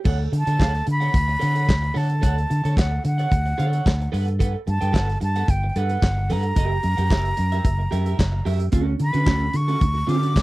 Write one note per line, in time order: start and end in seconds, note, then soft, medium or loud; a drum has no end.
0.04 0.26 D2 loud
0.04 0.22 A4 medium
0.04 0.19 C#5 medium
0.04 0.18 F#5 medium
0.04 kick loud
0.04 crash loud
0.19 muted clean electric guitar stroke soft
0.32 0.43 D3 loud
0.32 muted clean electric guitar stroke soft
0.32 closed hi-hat medium
0.39 0.86 A5 loud
0.47 0.57 D3 medium
0.47 0.58 A4 medium
0.47 0.58 C#5 medium
0.47 0.59 A5 medium
0.47 closed hi-hat medium
0.59 0.81 D2 medium
0.59 0.80 A4 medium
0.59 0.73 C#5 medium
0.59 0.72 F#5 medium
0.59 kick loud
0.59 snare loud
0.59 clap medium
0.73 muted clean electric guitar stroke soft
0.73 snare soft
0.73 closed hi-hat soft
0.86 1.08 D3 loud
0.86 muted clean electric guitar stroke soft
0.86 closed hi-hat medium
0.91 1.99 B5 loud
1.00 1.12 A4 soft
1.00 1.12 C#5 medium
1.00 1.13 F#5 medium
1.00 closed hi-hat soft
1.13 1.35 D2 medium
1.13 muted clean electric guitar stroke soft
1.13 kick loud
1.13 closed hi-hat medium
1.28 muted clean electric guitar stroke medium
1.28 closed hi-hat soft
1.39 1.71 D3 medium
1.39 1.55 A4 medium
1.39 1.54 C#5 medium
1.39 1.54 F#5 medium
1.39 closed hi-hat medium
1.55 1.66 A4 soft
1.55 1.66 C#5 medium
1.55 1.67 F#5 medium
1.55 closed hi-hat soft
1.67 1.90 D2 loud
1.67 muted clean electric guitar stroke soft
1.67 kick loud
1.67 snare loud
1.67 clap loud
1.82 muted clean electric guitar stroke soft
1.82 closed hi-hat soft
1.94 2.25 D3 loud
1.94 2.12 A4 medium
1.94 2.08 C#5 medium
1.94 2.07 F#5 medium
1.94 2.78 A5 medium
1.94 open hi-hat medium
2.08 muted clean electric guitar stroke soft
2.08 closed hi-hat medium
2.21 2.44 D2 medium
2.21 2.39 A4 medium
2.21 2.36 C#5 medium
2.21 2.35 F#5 loud
2.21 kick loud
2.21 closed hi-hat loud
2.36 muted clean electric guitar stroke soft
2.36 closed hi-hat soft
2.50 2.61 D3 loud
2.50 muted clean electric guitar stroke soft
2.50 closed hi-hat medium
2.64 2.74 D3 medium
2.64 2.76 A4 medium
2.64 2.77 C#5 medium
2.64 2.76 A5 medium
2.64 closed hi-hat medium
2.77 2.98 D2 loud
2.77 2.94 A4 medium
2.77 2.91 C#5 medium
2.77 2.91 F#5 medium
2.77 3.04 F#5 medium
2.77 kick loud
2.77 snare loud
2.77 clap medium
2.92 muted clean electric guitar stroke soft
3.04 3.25 D3 loud
3.04 4.10 F#5 medium
3.04 muted clean electric guitar stroke soft
3.04 closed hi-hat medium
3.18 3.31 A4 soft
3.18 3.31 C#5 medium
3.18 3.31 F#5 medium
3.18 closed hi-hat soft
3.32 3.52 D2 loud
3.32 muted clean electric guitar stroke soft
3.32 kick loud
3.32 closed hi-hat medium
3.46 muted clean electric guitar stroke medium
3.46 closed hi-hat soft
3.58 3.80 D3 loud
3.58 3.74 A4 medium
3.58 3.73 C#5 medium
3.58 3.72 F#5 loud
3.58 closed hi-hat medium
3.73 3.85 A4 soft
3.73 3.86 C#5 medium
3.73 3.85 F#5 medium
3.73 closed hi-hat soft
3.86 4.06 D2 loud
3.86 muted clean electric guitar stroke soft
3.86 kick loud
3.86 snare loud
3.86 clap medium
4.01 muted clean electric guitar stroke soft
4.01 closed hi-hat soft
4.12 4.54 G2 loud
4.12 4.29 A4 medium
4.12 4.27 B4 medium
4.12 4.25 F#5 loud
4.12 open hi-hat medium
4.27 muted clean electric guitar stroke soft
4.27 closed hi-hat soft
4.39 4.57 A4 medium
4.39 4.53 B4 medium
4.39 4.53 F#5 medium
4.39 kick loud
4.39 closed hi-hat loud
4.54 muted clean electric guitar stroke soft
4.67 4.78 G2 loud
4.67 5.18 A5 medium
4.67 muted clean electric guitar stroke soft
4.67 closed hi-hat medium
4.81 4.91 G2 loud
4.81 4.91 A4 soft
4.81 4.92 B4 medium
4.81 4.93 G5 medium
4.81 closed hi-hat medium
4.92 5.15 G1 loud
4.92 5.10 A4 medium
4.92 5.07 B4 medium
4.92 5.07 F#5 loud
4.92 kick loud
4.92 snare loud
4.92 clap medium
5.08 muted clean electric guitar stroke soft
5.08 snare soft
5.08 closed hi-hat soft
5.21 5.42 G2 loud
5.21 5.52 A5 medium
5.21 muted clean electric guitar stroke soft
5.21 closed hi-hat medium
5.36 5.47 A4 medium
5.36 5.48 B4 medium
5.36 5.48 F#5 medium
5.36 closed hi-hat soft
5.48 5.69 G1 loud
5.48 5.70 G5 medium
5.48 muted clean electric guitar stroke medium
5.48 kick loud
5.48 closed hi-hat medium
5.64 muted clean electric guitar stroke soft
5.70 5.79 G5 medium
5.76 5.96 G2 loud
5.76 5.90 A4 loud
5.76 5.90 B4 medium
5.76 5.89 F#5 medium
5.76 6.34 F#5 medium
5.76 closed hi-hat medium
5.89 6.01 A4 soft
5.89 6.02 B4 medium
5.89 6.02 F#5 medium
5.89 closed hi-hat soft
6.02 6.32 G1 loud
6.02 kick loud
6.02 snare loud
6.02 clap medium
6.17 muted clean electric guitar stroke soft
6.30 6.51 G2 loud
6.30 6.47 A4 loud
6.30 6.43 B4 loud
6.30 6.42 F#5 loud
6.30 8.48 A#5 loud
6.30 open hi-hat medium
6.43 muted clean electric guitar stroke soft
6.43 closed hi-hat soft
6.56 6.77 F#1 medium
6.56 6.77 G4 medium
6.56 6.70 A#4 medium
6.56 6.69 E5 medium
6.56 kick loud
6.56 closed hi-hat loud
6.70 muted clean electric guitar stroke soft
6.83 6.95 F#2 loud
6.83 muted clean electric guitar stroke soft
6.83 closed hi-hat medium
6.97 7.08 F#2 loud
6.97 7.09 G4 medium
6.97 7.10 A#4 medium
6.97 7.10 F#5 medium
6.97 closed hi-hat soft
7.10 7.31 F#1 medium
7.10 7.28 G4 medium
7.10 7.25 A#4 loud
7.10 7.23 E5 loud
7.10 kick loud
7.10 snare loud
7.10 clap medium
7.25 muted clean electric guitar stroke soft
7.25 closed hi-hat soft
7.37 7.59 F#2 loud
7.37 muted clean electric guitar stroke soft
7.37 closed hi-hat medium
7.52 7.63 G4 medium
7.52 7.64 A#4 medium
7.52 7.64 E5 medium
7.52 closed hi-hat soft
7.65 7.86 F#1 medium
7.65 muted clean electric guitar stroke soft
7.65 kick loud
7.65 closed hi-hat medium
7.79 muted clean electric guitar stroke soft
7.91 8.13 F#2 medium
7.91 8.06 G4 medium
7.91 8.05 A#4 medium
7.91 8.05 E5 loud
7.91 closed hi-hat medium
8.06 8.17 G4 medium
8.06 8.17 A#4 medium
8.06 8.17 E5 medium
8.06 closed hi-hat soft
8.18 8.40 F#1 loud
8.18 muted clean electric guitar stroke soft
8.18 kick loud
8.18 snare loud
8.18 clap medium
8.32 muted clean electric guitar stroke soft
8.45 8.67 F#2 loud
8.45 8.63 G4 medium
8.45 8.60 A#4 medium
8.45 8.59 E5 medium
8.45 open hi-hat medium
8.60 muted clean electric guitar stroke soft
8.60 closed hi-hat soft
8.72 8.94 D2 loud
8.72 8.93 C#4 medium
8.72 8.87 F#4 medium
8.72 8.86 A4 medium
8.72 kick loud
8.72 closed hi-hat medium
8.87 muted clean electric guitar stroke soft
9.00 9.11 D3 loud
9.00 9.58 B5 loud
9.00 muted clean electric guitar stroke soft
9.00 closed hi-hat medium
9.13 9.24 D3 loud
9.13 9.25 C#4 soft
9.13 9.26 F#4 medium
9.13 9.26 B4 medium
9.13 closed hi-hat medium
9.26 9.48 D2 loud
9.26 9.44 C#4 medium
9.26 9.41 F#4 loud
9.26 9.40 A4 medium
9.26 kick loud
9.26 snare loud
9.26 clap loud
9.41 muted clean electric guitar stroke soft
9.53 9.75 D3 loud
9.53 10.11 C#6 loud
9.53 muted clean electric guitar stroke soft
9.53 closed hi-hat medium
9.68 9.80 C#4 medium
9.68 9.80 F#4 medium
9.68 9.80 A4 medium
9.68 closed hi-hat soft
9.81 10.02 D2 medium
9.81 muted clean electric guitar stroke soft
9.81 kick loud
9.81 closed hi-hat medium
9.94 muted clean electric guitar stroke medium
10.07 10.37 D3 medium
10.07 10.21 C#4 medium
10.07 10.21 F#4 medium
10.07 10.20 A4 medium
10.07 10.43 D6 loud
10.07 closed hi-hat medium
10.21 10.33 C#4 soft
10.21 10.33 F#4 medium
10.21 10.34 A4 medium
10.21 closed hi-hat medium
10.34 10.43 D2 loud
10.34 muted clean electric guitar stroke soft
10.34 kick loud
10.34 snare loud
10.34 clap loud